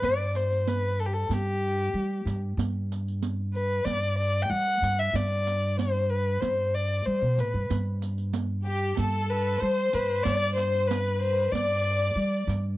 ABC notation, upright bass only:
X:1
M:4/4
L:1/16
Q:1/4=94
K:none
V:1 name="Upright bass" clef=bass
G,,8 G,,4 G,2 G,,2 | G,,8 G,,4 G,2 G,,2 | G,,8 G,,4 G, B,, A,, G,, | G,,8 G,,4 G,2 G,,2 |
G,,8 G,,4 G,2 G,,2 |]